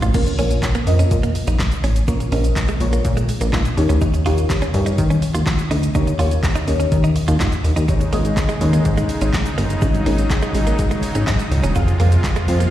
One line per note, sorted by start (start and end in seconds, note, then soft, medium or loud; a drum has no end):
0.00 0.12 A1 loud
0.00 0.10 C3 medium
0.00 0.10 G#3 medium
0.00 0.10 F4 medium
0.00 0.11 F4 medium
0.00 closed hi-hat medium
0.00 floor tom loud
0.00 shaker medium
0.14 0.33 A#1 loud
0.14 0.28 A#3 medium
0.14 0.23 A#3 medium
0.14 0.28 C#4 medium
0.14 0.28 F4 medium
0.14 0.28 A#4 medium
0.14 0.28 C#5 medium
0.14 kick loud
0.14 closed hi-hat medium
0.14 crash loud
0.14 shaker medium
0.27 muted clean electric guitar stroke soft
0.27 closed hi-hat soft
0.27 shaker medium
0.38 0.57 A#1 loud
0.38 0.66 A#3 medium
0.38 0.66 C#4 medium
0.38 0.47 C#4 medium
0.38 0.66 F4 medium
0.38 0.66 A#4 medium
0.38 0.66 C#5 loud
0.38 open hi-hat medium
0.38 shaker medium
0.50 closed hi-hat medium
0.50 shaker medium
0.63 kick loud
0.63 snare medium
0.63 clap loud
0.63 closed hi-hat medium
0.63 shaker medium
0.75 0.84 A#3 medium
0.75 closed hi-hat medium
0.75 shaker soft
0.75 shaker medium
0.87 1.06 F2 medium
0.87 1.42 A#3 medium
0.87 1.42 C#4 medium
0.87 1.42 F4 medium
0.87 1.42 A#4 medium
0.87 1.42 D#5 loud
0.87 muted clean electric guitar stroke soft
0.87 open hi-hat medium
0.87 shaker medium
0.87 shaker soft
0.99 1.08 C#4 medium
0.99 closed hi-hat medium
0.99 shaker medium
0.99 shaker soft
1.11 1.30 A#2 loud
1.11 kick loud
1.11 closed hi-hat medium
1.11 shaker medium
1.23 1.32 A#3 medium
1.23 closed hi-hat medium
1.23 shaker medium
1.35 muted clean electric guitar stroke soft
1.35 open hi-hat medium
1.35 shaker medium
1.47 1.57 A#1 medium
1.47 1.56 D#4 medium
1.47 closed hi-hat medium
1.47 shaker medium
1.47 shaker soft
1.59 kick loud
1.59 snare loud
1.59 clap loud
1.59 closed hi-hat medium
1.59 shaker medium
1.72 closed hi-hat medium
1.72 shaker medium
1.84 2.03 A1 medium
1.84 1.92 C#4 medium
1.84 open hi-hat medium
1.84 shaker medium
1.96 closed hi-hat medium
1.96 shaker medium
2.07 2.27 A#1 loud
2.07 2.22 A#3 medium
2.07 2.17 A#3 medium
2.07 2.22 C#4 medium
2.07 2.22 F4 medium
2.07 2.22 A#4 medium
2.07 2.22 C#5 medium
2.07 kick loud
2.07 closed hi-hat medium
2.07 shaker medium
2.20 muted clean electric guitar stroke soft
2.20 closed hi-hat medium
2.20 shaker medium
2.32 2.51 A#1 loud
2.32 2.60 A#3 medium
2.32 2.60 C#4 medium
2.32 2.41 C#4 medium
2.32 2.60 F4 medium
2.32 2.60 A#4 medium
2.32 2.60 D#5 loud
2.32 open hi-hat medium
2.32 shaker medium
2.44 closed hi-hat medium
2.44 shaker soft
2.44 shaker medium
2.56 kick loud
2.56 snare medium
2.56 clap loud
2.56 closed hi-hat medium
2.56 shaker medium
2.68 2.77 G#3 medium
2.68 closed hi-hat medium
2.68 shaker soft
2.68 shaker medium
2.80 2.99 A#1 loud
2.80 3.36 A#3 medium
2.80 3.36 C#4 medium
2.80 3.36 F4 medium
2.80 3.36 A#4 medium
2.80 3.36 C#5 loud
2.80 muted clean electric guitar stroke medium
2.80 open hi-hat medium
2.80 shaker medium
2.80 shaker soft
2.93 3.01 A#3 medium
2.93 closed hi-hat medium
2.93 shaker soft
2.93 shaker medium
3.05 3.24 A#2 loud
3.05 kick loud
3.05 closed hi-hat medium
3.05 shaker medium
3.17 3.25 G#3 medium
3.17 closed hi-hat medium
3.17 shaker medium
3.29 muted clean electric guitar stroke soft
3.29 open hi-hat medium
3.29 shaker medium
3.41 3.50 A#1 loud
3.41 3.50 A#3 medium
3.41 closed hi-hat medium
3.41 shaker medium
3.41 shaker soft
3.53 3.62 A#2 loud
3.53 3.62 D#4 medium
3.53 kick loud
3.53 snare loud
3.53 clap loud
3.53 closed hi-hat medium
3.53 shaker medium
3.65 closed hi-hat medium
3.65 shaker medium
3.77 3.87 D#2 loud
3.77 4.16 C#4 loud
3.77 4.16 D#4 medium
3.77 4.16 G4 medium
3.77 4.16 A#4 medium
3.77 4.16 C#5 loud
3.77 muted clean electric guitar stroke medium
3.77 open hi-hat medium
3.77 shaker medium
3.89 3.99 D2 loud
3.89 3.98 C#4 medium
3.89 closed hi-hat medium
3.89 shaker medium
4.01 4.20 D#2 loud
4.01 4.10 D#4 medium
4.01 kick loud
4.01 closed hi-hat medium
4.01 shaker medium
4.14 muted clean electric guitar stroke soft
4.14 closed hi-hat medium
4.14 shaker medium
4.25 4.44 D#2 loud
4.25 4.53 C#4 medium
4.25 4.53 D#4 medium
4.25 4.34 F4 medium
4.25 4.53 G4 medium
4.25 4.53 A#4 medium
4.25 4.54 C#5 loud
4.25 open hi-hat medium
4.25 shaker medium
4.37 closed hi-hat medium
4.37 shaker medium
4.50 kick loud
4.50 snare medium
4.50 clap loud
4.50 closed hi-hat medium
4.50 shaker medium
4.61 4.71 C#4 medium
4.61 closed hi-hat medium
4.61 shaker soft
4.61 shaker medium
4.74 4.93 G2 loud
4.74 5.29 C#4 medium
4.74 5.29 D#4 medium
4.74 5.29 G4 medium
4.74 5.29 A#4 medium
4.74 5.29 C#5 loud
4.74 muted clean electric guitar stroke soft
4.74 open hi-hat medium
4.74 shaker soft
4.74 shaker medium
4.86 4.95 D#4 medium
4.86 closed hi-hat medium
4.86 shaker soft
4.86 shaker medium
4.98 5.17 D#3 loud
4.98 kick loud
4.98 closed hi-hat medium
4.98 shaker medium
5.10 5.19 C#4 medium
5.10 closed hi-hat medium
5.10 shaker medium
5.22 muted clean electric guitar stroke soft
5.22 open hi-hat medium
5.22 shaker medium
5.34 5.44 D#2 medium
5.34 5.43 F4 medium
5.34 closed hi-hat medium
5.34 shaker soft
5.34 shaker medium
5.47 kick loud
5.47 snare loud
5.47 clap loud
5.47 closed hi-hat medium
5.47 shaker medium
5.59 closed hi-hat medium
5.59 shaker medium
5.71 5.90 D2 medium
5.71 5.79 D#4 medium
5.71 open hi-hat medium
5.71 shaker medium
5.83 closed hi-hat medium
5.83 shaker medium
5.95 6.14 D#2 loud
5.95 6.09 C#4 medium
5.95 6.09 D#4 medium
5.95 6.04 D#4 medium
5.95 6.09 G4 medium
5.95 6.09 A#4 medium
5.95 6.09 C#5 loud
5.95 kick loud
5.95 closed hi-hat medium
5.95 shaker medium
6.07 muted clean electric guitar stroke soft
6.07 closed hi-hat medium
6.07 shaker medium
6.19 6.38 D#2 loud
6.19 6.47 C#4 medium
6.19 6.47 D#4 medium
6.19 6.28 F4 medium
6.19 6.47 G4 medium
6.19 6.47 A#4 medium
6.19 6.47 C#5 loud
6.19 open hi-hat medium
6.19 shaker medium
6.31 closed hi-hat medium
6.31 shaker medium
6.43 kick loud
6.43 snare medium
6.43 clap loud
6.43 closed hi-hat medium
6.43 shaker medium
6.55 6.64 D#4 medium
6.55 closed hi-hat medium
6.55 shaker soft
6.55 shaker medium
6.67 6.86 D#2 loud
6.67 7.23 C#4 medium
6.67 7.23 D#4 medium
6.67 7.23 G4 medium
6.67 7.23 A#4 medium
6.67 7.23 C#5 medium
6.67 muted clean electric guitar stroke soft
6.67 open hi-hat medium
6.67 shaker medium
6.67 shaker soft
6.80 6.88 C#4 medium
6.80 closed hi-hat medium
6.80 shaker soft
6.80 shaker medium
6.92 7.11 D#3 loud
6.92 kick loud
6.92 closed hi-hat medium
6.92 shaker medium
7.04 7.13 D#4 medium
7.04 closed hi-hat medium
7.04 shaker medium
7.16 muted clean electric guitar stroke soft
7.16 open hi-hat medium
7.16 shaker medium
7.28 7.38 D#2 loud
7.28 7.37 F4 medium
7.28 closed hi-hat medium
7.28 shaker medium
7.28 shaker soft
7.40 7.49 G2 loud
7.40 7.49 D#4 medium
7.40 kick loud
7.40 snare loud
7.40 clap loud
7.40 closed hi-hat medium
7.40 shaker medium
7.52 closed hi-hat medium
7.52 shaker medium
7.64 7.74 D#2 medium
7.64 muted clean electric guitar stroke soft
7.64 open hi-hat medium
7.64 shaker medium
7.76 7.86 D#2 medium
7.76 7.85 D#4 medium
7.76 closed hi-hat medium
7.76 shaker medium
7.88 8.07 G#1 loud
7.88 11.72 C#3 medium
7.88 7.97 G#3 medium
7.88 9.80 G#3 medium
7.88 8.02 C#4 medium
7.88 8.02 D#4 medium
7.88 11.72 D#4 medium
7.88 8.02 G#4 medium
7.88 8.03 C#5 medium
7.88 8.03 D#5 medium
7.88 kick loud
7.88 closed hi-hat medium
7.88 shaker medium
8.01 muted clean electric guitar stroke soft
8.01 closed hi-hat medium
8.01 shaker medium
8.12 8.32 G#1 loud
8.12 8.21 A#3 medium
8.12 8.40 C#4 medium
8.12 8.40 D#4 medium
8.12 8.40 G#4 medium
8.12 8.41 C#5 medium
8.12 8.41 D#5 loud
8.12 open hi-hat medium
8.12 shaker medium
8.25 closed hi-hat medium
8.25 shaker medium
8.37 kick loud
8.37 snare medium
8.37 clap loud
8.37 closed hi-hat medium
8.37 shaker medium
8.49 8.58 G#3 medium
8.49 closed hi-hat medium
8.49 shaker soft
8.49 shaker medium
8.61 8.80 D#2 loud
8.61 9.16 C#4 medium
8.61 9.17 D#4 medium
8.61 9.17 G#4 medium
8.61 9.17 C#5 medium
8.61 9.17 D#5 loud
8.61 muted clean electric guitar stroke soft
8.61 open hi-hat medium
8.61 shaker medium
8.61 shaker soft
8.73 8.82 A#3 medium
8.73 closed hi-hat medium
8.73 shaker medium
8.73 shaker soft
8.85 9.04 G#2 loud
8.85 kick loud
8.85 closed hi-hat medium
8.85 shaker medium
8.97 9.06 G#3 medium
8.97 closed hi-hat medium
8.97 shaker medium
9.09 muted clean electric guitar stroke soft
9.09 open hi-hat medium
9.09 shaker medium
9.21 9.31 G#1 medium
9.21 9.30 C#4 medium
9.21 closed hi-hat medium
9.21 shaker medium
9.33 kick loud
9.33 snare loud
9.33 clap loud
9.33 closed hi-hat medium
9.33 shaker medium
9.46 closed hi-hat medium
9.46 shaker medium
9.58 9.77 G1 medium
9.58 9.66 A#3 medium
9.58 open hi-hat medium
9.58 shaker medium
9.70 closed hi-hat medium
9.70 shaker medium
9.81 10.01 G#1 loud
9.81 11.74 F#3 medium
9.81 9.91 G#3 medium
9.81 9.96 C#4 medium
9.81 9.96 D#4 medium
9.81 9.96 G#4 medium
9.81 9.96 C#5 medium
9.81 9.96 D#5 medium
9.81 kick loud
9.81 closed hi-hat medium
9.81 shaker medium
9.94 muted clean electric guitar stroke soft
9.94 closed hi-hat medium
9.94 shaker medium
10.06 10.25 G#1 loud
10.06 10.15 A#3 medium
10.06 10.34 C#4 medium
10.06 10.34 D#4 medium
10.06 10.34 G#4 medium
10.06 10.34 C#5 medium
10.06 10.34 D#5 loud
10.06 open hi-hat medium
10.06 shaker medium
10.18 closed hi-hat medium
10.18 shaker soft
10.18 shaker medium
10.30 kick loud
10.30 snare medium
10.30 clap loud
10.30 closed hi-hat medium
10.30 shaker medium
10.42 10.51 G#3 medium
10.42 closed hi-hat medium
10.42 shaker soft
10.42 shaker medium
10.54 10.73 G#1 loud
10.54 11.10 C#4 medium
10.54 11.10 D#4 medium
10.54 11.10 G#4 medium
10.54 11.10 C#5 medium
10.54 11.10 D#5 medium
10.54 muted clean electric guitar stroke soft
10.54 open hi-hat medium
10.54 shaker soft
10.54 shaker medium
10.67 10.75 A#3 medium
10.67 closed hi-hat medium
10.67 shaker soft
10.67 shaker medium
10.78 10.98 G#2 loud
10.78 kick loud
10.78 closed hi-hat medium
10.78 shaker medium
10.91 11.00 G#3 medium
10.91 closed hi-hat medium
10.91 shaker medium
11.02 muted clean electric guitar stroke soft
11.02 open hi-hat medium
11.02 shaker medium
11.15 11.25 G#1 medium
11.15 11.24 C#4 medium
11.15 closed hi-hat medium
11.15 shaker soft
11.15 shaker medium
11.27 11.37 G#2 loud
11.27 11.36 D#4 medium
11.27 kick loud
11.27 snare loud
11.27 clap loud
11.27 closed hi-hat medium
11.27 shaker medium
11.39 closed hi-hat medium
11.39 shaker medium
11.52 11.61 C#2 medium
11.52 muted clean electric guitar stroke soft
11.52 open hi-hat medium
11.52 shaker medium
11.63 11.73 E1 medium
11.63 11.72 C#4 medium
11.63 closed hi-hat medium
11.63 shaker medium
11.75 11.94 F2 loud
11.75 12.70 C3 medium
11.75 12.70 G#3 medium
11.75 11.89 C4 medium
11.75 11.89 F4 medium
11.75 11.84 F4 medium
11.75 12.70 F4 medium
11.75 11.89 G#4 medium
11.75 11.89 C5 medium
11.75 11.90 F5 medium
11.75 kick loud
11.75 closed hi-hat medium
11.75 shaker medium
11.88 muted clean electric guitar stroke soft
11.88 closed hi-hat soft
11.88 shaker medium
12.00 12.19 F2 loud
12.00 12.08 A#3 medium
12.00 12.27 C4 medium
12.00 12.28 F4 medium
12.00 12.28 G#4 medium
12.00 12.28 C5 medium
12.00 12.28 F5 loud
12.00 open hi-hat medium
12.00 shaker medium
12.12 closed hi-hat medium
12.12 shaker medium
12.24 kick loud
12.24 snare medium
12.24 clap loud
12.24 closed hi-hat medium
12.24 shaker medium
12.36 12.45 G#3 medium
12.36 closed hi-hat medium
12.36 shaker soft
12.36 shaker medium
12.48 12.67 F2 loud
12.48 12.70 C4 medium
12.48 12.70 F4 medium
12.48 12.70 G#4 medium
12.48 12.70 C5 medium
12.48 12.70 F5 medium
12.48 muted clean electric guitar stroke medium
12.48 open hi-hat medium
12.48 shaker medium
12.48 shaker soft
12.60 12.69 A#3 medium
12.60 closed hi-hat medium
12.60 shaker medium
12.60 shaker soft